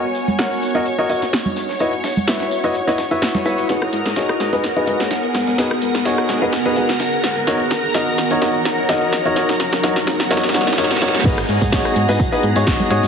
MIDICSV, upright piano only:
0, 0, Header, 1, 2, 480
1, 0, Start_track
1, 0, Key_signature, 5, "minor"
1, 0, Tempo, 472441
1, 1832, Time_signature, 4, 2, 24, 8
1, 13285, End_track
2, 0, Start_track
2, 0, Title_t, "Upright piano"
2, 0, Program_c, 0, 0
2, 392, Note_on_c, 0, 66, 70
2, 392, Note_on_c, 0, 70, 66
2, 392, Note_on_c, 0, 73, 64
2, 392, Note_on_c, 0, 78, 76
2, 730, Note_off_c, 0, 66, 0
2, 730, Note_off_c, 0, 70, 0
2, 730, Note_off_c, 0, 73, 0
2, 730, Note_off_c, 0, 78, 0
2, 760, Note_on_c, 0, 66, 87
2, 760, Note_on_c, 0, 70, 79
2, 760, Note_on_c, 0, 73, 80
2, 760, Note_on_c, 0, 75, 93
2, 852, Note_off_c, 0, 66, 0
2, 852, Note_off_c, 0, 70, 0
2, 852, Note_off_c, 0, 73, 0
2, 852, Note_off_c, 0, 75, 0
2, 1001, Note_on_c, 0, 66, 90
2, 1001, Note_on_c, 0, 70, 82
2, 1001, Note_on_c, 0, 73, 83
2, 1001, Note_on_c, 0, 75, 102
2, 1095, Note_off_c, 0, 66, 0
2, 1095, Note_off_c, 0, 70, 0
2, 1095, Note_off_c, 0, 73, 0
2, 1095, Note_off_c, 0, 75, 0
2, 1112, Note_on_c, 0, 66, 76
2, 1112, Note_on_c, 0, 70, 68
2, 1112, Note_on_c, 0, 73, 70
2, 1112, Note_on_c, 0, 75, 84
2, 1219, Note_off_c, 0, 66, 0
2, 1219, Note_off_c, 0, 70, 0
2, 1219, Note_off_c, 0, 73, 0
2, 1219, Note_off_c, 0, 75, 0
2, 1832, Note_on_c, 0, 64, 74
2, 1832, Note_on_c, 0, 66, 64
2, 1832, Note_on_c, 0, 71, 66
2, 1832, Note_on_c, 0, 73, 65
2, 1832, Note_on_c, 0, 75, 80
2, 1939, Note_off_c, 0, 64, 0
2, 1939, Note_off_c, 0, 66, 0
2, 1939, Note_off_c, 0, 71, 0
2, 1939, Note_off_c, 0, 73, 0
2, 1939, Note_off_c, 0, 75, 0
2, 2311, Note_on_c, 0, 64, 72
2, 2311, Note_on_c, 0, 66, 66
2, 2311, Note_on_c, 0, 71, 63
2, 2311, Note_on_c, 0, 73, 62
2, 2311, Note_on_c, 0, 76, 77
2, 2650, Note_off_c, 0, 64, 0
2, 2650, Note_off_c, 0, 66, 0
2, 2650, Note_off_c, 0, 71, 0
2, 2650, Note_off_c, 0, 73, 0
2, 2650, Note_off_c, 0, 76, 0
2, 2681, Note_on_c, 0, 64, 86
2, 2681, Note_on_c, 0, 66, 82
2, 2681, Note_on_c, 0, 73, 80
2, 2681, Note_on_c, 0, 75, 98
2, 2682, Note_on_c, 0, 71, 79
2, 2773, Note_off_c, 0, 64, 0
2, 2773, Note_off_c, 0, 66, 0
2, 2773, Note_off_c, 0, 71, 0
2, 2773, Note_off_c, 0, 73, 0
2, 2773, Note_off_c, 0, 75, 0
2, 2920, Note_on_c, 0, 75, 100
2, 2921, Note_on_c, 0, 64, 94
2, 2921, Note_on_c, 0, 66, 85
2, 2921, Note_on_c, 0, 71, 85
2, 2921, Note_on_c, 0, 73, 84
2, 3015, Note_off_c, 0, 64, 0
2, 3015, Note_off_c, 0, 66, 0
2, 3015, Note_off_c, 0, 71, 0
2, 3015, Note_off_c, 0, 73, 0
2, 3015, Note_off_c, 0, 75, 0
2, 3160, Note_on_c, 0, 64, 95
2, 3160, Note_on_c, 0, 66, 88
2, 3160, Note_on_c, 0, 71, 86
2, 3160, Note_on_c, 0, 73, 86
2, 3160, Note_on_c, 0, 76, 103
2, 3485, Note_off_c, 0, 64, 0
2, 3485, Note_off_c, 0, 66, 0
2, 3485, Note_off_c, 0, 71, 0
2, 3485, Note_off_c, 0, 73, 0
2, 3485, Note_off_c, 0, 76, 0
2, 3510, Note_on_c, 0, 64, 92
2, 3510, Note_on_c, 0, 66, 88
2, 3510, Note_on_c, 0, 71, 87
2, 3511, Note_on_c, 0, 73, 86
2, 3511, Note_on_c, 0, 76, 104
2, 3725, Note_off_c, 0, 64, 0
2, 3725, Note_off_c, 0, 66, 0
2, 3725, Note_off_c, 0, 71, 0
2, 3725, Note_off_c, 0, 73, 0
2, 3725, Note_off_c, 0, 76, 0
2, 3751, Note_on_c, 0, 63, 72
2, 3751, Note_on_c, 0, 66, 66
2, 3751, Note_on_c, 0, 68, 67
2, 3751, Note_on_c, 0, 71, 80
2, 3858, Note_off_c, 0, 63, 0
2, 3858, Note_off_c, 0, 66, 0
2, 3858, Note_off_c, 0, 68, 0
2, 3858, Note_off_c, 0, 71, 0
2, 4231, Note_on_c, 0, 63, 70
2, 4231, Note_on_c, 0, 66, 64
2, 4231, Note_on_c, 0, 68, 66
2, 4231, Note_on_c, 0, 73, 79
2, 4570, Note_off_c, 0, 63, 0
2, 4570, Note_off_c, 0, 66, 0
2, 4570, Note_off_c, 0, 68, 0
2, 4570, Note_off_c, 0, 73, 0
2, 4600, Note_on_c, 0, 63, 88
2, 4600, Note_on_c, 0, 66, 80
2, 4600, Note_on_c, 0, 68, 79
2, 4600, Note_on_c, 0, 71, 97
2, 4692, Note_off_c, 0, 63, 0
2, 4692, Note_off_c, 0, 66, 0
2, 4692, Note_off_c, 0, 68, 0
2, 4692, Note_off_c, 0, 71, 0
2, 4840, Note_on_c, 0, 63, 93
2, 4841, Note_on_c, 0, 66, 85
2, 4841, Note_on_c, 0, 68, 86
2, 4841, Note_on_c, 0, 71, 102
2, 4935, Note_off_c, 0, 63, 0
2, 4935, Note_off_c, 0, 66, 0
2, 4935, Note_off_c, 0, 68, 0
2, 4935, Note_off_c, 0, 71, 0
2, 4950, Note_on_c, 0, 68, 72
2, 4951, Note_on_c, 0, 63, 78
2, 4951, Note_on_c, 0, 66, 69
2, 4951, Note_on_c, 0, 71, 85
2, 5058, Note_off_c, 0, 63, 0
2, 5058, Note_off_c, 0, 66, 0
2, 5058, Note_off_c, 0, 68, 0
2, 5058, Note_off_c, 0, 71, 0
2, 5671, Note_on_c, 0, 63, 74
2, 5671, Note_on_c, 0, 66, 67
2, 5671, Note_on_c, 0, 68, 67
2, 5671, Note_on_c, 0, 71, 83
2, 5778, Note_off_c, 0, 71, 0
2, 5779, Note_off_c, 0, 63, 0
2, 5779, Note_off_c, 0, 66, 0
2, 5779, Note_off_c, 0, 68, 0
2, 6151, Note_on_c, 0, 66, 66
2, 6151, Note_on_c, 0, 68, 67
2, 6151, Note_on_c, 0, 73, 80
2, 6152, Note_on_c, 0, 63, 72
2, 6490, Note_off_c, 0, 63, 0
2, 6490, Note_off_c, 0, 66, 0
2, 6490, Note_off_c, 0, 68, 0
2, 6490, Note_off_c, 0, 73, 0
2, 6520, Note_on_c, 0, 66, 81
2, 6520, Note_on_c, 0, 68, 82
2, 6520, Note_on_c, 0, 71, 98
2, 6521, Note_on_c, 0, 63, 91
2, 6612, Note_off_c, 0, 66, 0
2, 6612, Note_off_c, 0, 71, 0
2, 6613, Note_off_c, 0, 63, 0
2, 6613, Note_off_c, 0, 68, 0
2, 6761, Note_on_c, 0, 63, 97
2, 6761, Note_on_c, 0, 68, 89
2, 6761, Note_on_c, 0, 71, 103
2, 6762, Note_on_c, 0, 66, 87
2, 6855, Note_off_c, 0, 63, 0
2, 6855, Note_off_c, 0, 68, 0
2, 6855, Note_off_c, 0, 71, 0
2, 6856, Note_off_c, 0, 66, 0
2, 6872, Note_on_c, 0, 63, 77
2, 6872, Note_on_c, 0, 66, 72
2, 6872, Note_on_c, 0, 68, 72
2, 6873, Note_on_c, 0, 71, 85
2, 6979, Note_off_c, 0, 63, 0
2, 6979, Note_off_c, 0, 66, 0
2, 6979, Note_off_c, 0, 68, 0
2, 6979, Note_off_c, 0, 71, 0
2, 7592, Note_on_c, 0, 63, 71
2, 7592, Note_on_c, 0, 66, 64
2, 7592, Note_on_c, 0, 70, 62
2, 7592, Note_on_c, 0, 73, 75
2, 7699, Note_off_c, 0, 63, 0
2, 7699, Note_off_c, 0, 66, 0
2, 7699, Note_off_c, 0, 70, 0
2, 7699, Note_off_c, 0, 73, 0
2, 8071, Note_on_c, 0, 66, 63
2, 8072, Note_on_c, 0, 63, 65
2, 8072, Note_on_c, 0, 70, 63
2, 8072, Note_on_c, 0, 75, 73
2, 8410, Note_off_c, 0, 63, 0
2, 8410, Note_off_c, 0, 66, 0
2, 8410, Note_off_c, 0, 70, 0
2, 8410, Note_off_c, 0, 75, 0
2, 8441, Note_on_c, 0, 63, 84
2, 8441, Note_on_c, 0, 66, 76
2, 8441, Note_on_c, 0, 70, 78
2, 8441, Note_on_c, 0, 73, 93
2, 8532, Note_off_c, 0, 70, 0
2, 8533, Note_off_c, 0, 63, 0
2, 8533, Note_off_c, 0, 66, 0
2, 8533, Note_off_c, 0, 73, 0
2, 8551, Note_on_c, 0, 63, 71
2, 8551, Note_on_c, 0, 66, 66
2, 8552, Note_on_c, 0, 70, 67
2, 8552, Note_on_c, 0, 73, 78
2, 8658, Note_off_c, 0, 66, 0
2, 8659, Note_off_c, 0, 63, 0
2, 8659, Note_off_c, 0, 70, 0
2, 8659, Note_off_c, 0, 73, 0
2, 9031, Note_on_c, 0, 66, 66
2, 9031, Note_on_c, 0, 70, 64
2, 9032, Note_on_c, 0, 63, 70
2, 9032, Note_on_c, 0, 75, 79
2, 9370, Note_off_c, 0, 63, 0
2, 9370, Note_off_c, 0, 66, 0
2, 9370, Note_off_c, 0, 70, 0
2, 9370, Note_off_c, 0, 75, 0
2, 9402, Note_on_c, 0, 63, 89
2, 9402, Note_on_c, 0, 66, 82
2, 9402, Note_on_c, 0, 70, 82
2, 9402, Note_on_c, 0, 73, 95
2, 9493, Note_off_c, 0, 63, 0
2, 9493, Note_off_c, 0, 66, 0
2, 9493, Note_off_c, 0, 70, 0
2, 9493, Note_off_c, 0, 73, 0
2, 9513, Note_on_c, 0, 63, 76
2, 9513, Note_on_c, 0, 66, 69
2, 9513, Note_on_c, 0, 70, 69
2, 9513, Note_on_c, 0, 73, 84
2, 9619, Note_off_c, 0, 63, 0
2, 9619, Note_off_c, 0, 66, 0
2, 9619, Note_off_c, 0, 70, 0
2, 9619, Note_off_c, 0, 73, 0
2, 9992, Note_on_c, 0, 63, 75
2, 9992, Note_on_c, 0, 73, 80
2, 9993, Note_on_c, 0, 66, 71
2, 9993, Note_on_c, 0, 70, 71
2, 10099, Note_off_c, 0, 63, 0
2, 10099, Note_off_c, 0, 66, 0
2, 10099, Note_off_c, 0, 70, 0
2, 10099, Note_off_c, 0, 73, 0
2, 10472, Note_on_c, 0, 66, 72
2, 10472, Note_on_c, 0, 70, 71
2, 10472, Note_on_c, 0, 73, 87
2, 10473, Note_on_c, 0, 63, 76
2, 10579, Note_off_c, 0, 63, 0
2, 10579, Note_off_c, 0, 66, 0
2, 10579, Note_off_c, 0, 70, 0
2, 10579, Note_off_c, 0, 73, 0
2, 10712, Note_on_c, 0, 63, 79
2, 10712, Note_on_c, 0, 66, 73
2, 10712, Note_on_c, 0, 70, 73
2, 10712, Note_on_c, 0, 73, 88
2, 10819, Note_off_c, 0, 63, 0
2, 10819, Note_off_c, 0, 66, 0
2, 10819, Note_off_c, 0, 70, 0
2, 10819, Note_off_c, 0, 73, 0
2, 10952, Note_on_c, 0, 63, 79
2, 10952, Note_on_c, 0, 66, 72
2, 10952, Note_on_c, 0, 70, 73
2, 10952, Note_on_c, 0, 73, 85
2, 11059, Note_off_c, 0, 63, 0
2, 11059, Note_off_c, 0, 66, 0
2, 11059, Note_off_c, 0, 70, 0
2, 11059, Note_off_c, 0, 73, 0
2, 11192, Note_on_c, 0, 63, 77
2, 11192, Note_on_c, 0, 66, 74
2, 11192, Note_on_c, 0, 70, 74
2, 11192, Note_on_c, 0, 73, 89
2, 11299, Note_off_c, 0, 63, 0
2, 11299, Note_off_c, 0, 66, 0
2, 11299, Note_off_c, 0, 70, 0
2, 11299, Note_off_c, 0, 73, 0
2, 11432, Note_on_c, 0, 63, 74
2, 11432, Note_on_c, 0, 66, 71
2, 11432, Note_on_c, 0, 68, 69
2, 11432, Note_on_c, 0, 71, 85
2, 11539, Note_off_c, 0, 63, 0
2, 11539, Note_off_c, 0, 66, 0
2, 11539, Note_off_c, 0, 68, 0
2, 11539, Note_off_c, 0, 71, 0
2, 11912, Note_on_c, 0, 63, 74
2, 11912, Note_on_c, 0, 66, 68
2, 11912, Note_on_c, 0, 68, 66
2, 11912, Note_on_c, 0, 73, 81
2, 12251, Note_off_c, 0, 63, 0
2, 12251, Note_off_c, 0, 66, 0
2, 12251, Note_off_c, 0, 68, 0
2, 12251, Note_off_c, 0, 73, 0
2, 12281, Note_on_c, 0, 63, 92
2, 12281, Note_on_c, 0, 66, 86
2, 12281, Note_on_c, 0, 68, 84
2, 12281, Note_on_c, 0, 71, 105
2, 12373, Note_off_c, 0, 63, 0
2, 12373, Note_off_c, 0, 66, 0
2, 12373, Note_off_c, 0, 68, 0
2, 12373, Note_off_c, 0, 71, 0
2, 12520, Note_on_c, 0, 63, 96
2, 12520, Note_on_c, 0, 66, 86
2, 12520, Note_on_c, 0, 68, 90
2, 12520, Note_on_c, 0, 71, 108
2, 12615, Note_off_c, 0, 63, 0
2, 12615, Note_off_c, 0, 66, 0
2, 12615, Note_off_c, 0, 68, 0
2, 12615, Note_off_c, 0, 71, 0
2, 12759, Note_on_c, 0, 63, 97
2, 12759, Note_on_c, 0, 73, 109
2, 12760, Note_on_c, 0, 66, 92
2, 12760, Note_on_c, 0, 68, 88
2, 13084, Note_off_c, 0, 63, 0
2, 13084, Note_off_c, 0, 73, 0
2, 13085, Note_off_c, 0, 66, 0
2, 13085, Note_off_c, 0, 68, 0
2, 13111, Note_on_c, 0, 63, 98
2, 13111, Note_on_c, 0, 66, 92
2, 13111, Note_on_c, 0, 68, 90
2, 13111, Note_on_c, 0, 73, 112
2, 13285, Note_off_c, 0, 63, 0
2, 13285, Note_off_c, 0, 66, 0
2, 13285, Note_off_c, 0, 68, 0
2, 13285, Note_off_c, 0, 73, 0
2, 13285, End_track
0, 0, End_of_file